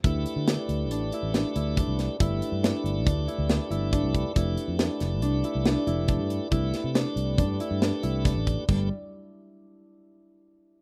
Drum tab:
CC |----------|----------|----------|----------|
HH |xxxxxxxxxx|xxxxxxxxxx|xxxxxxxxxx|xxxxxxxxxx|
SD |--o---o--o|--o---o---|--oo--o---|-oo---o-o-|
BD |o-------o-|o---o---oo|o-------o-|o---o---oo|

CC |x---------|
HH |----------|
SD |----------|
BD |o---------|